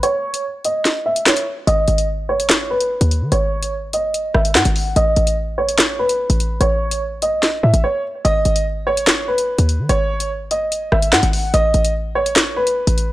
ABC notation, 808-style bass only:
X:1
M:4/4
L:1/16
Q:1/4=146
K:G#phr
V:1 name="808-style bass" clef=bass
z16 | G,,,2 G,,,8- G,,,3 D,,2 D, | G,,,8- G,,,2 G,,,2 G,, G,,,3 | A,,,2 A,,,8- A,,,3 A,,,3 |
A,,,6- A,,, B,,,3/2 A,,,3/2 A,, A,,, z4 | G,,,2 G,,,8- G,,,3 D,,2 D, | G,,,8- G,,,2 G,,,2 G,, G,,,3 | A,,,2 A,,,8- A,,,3 A,,,3 |]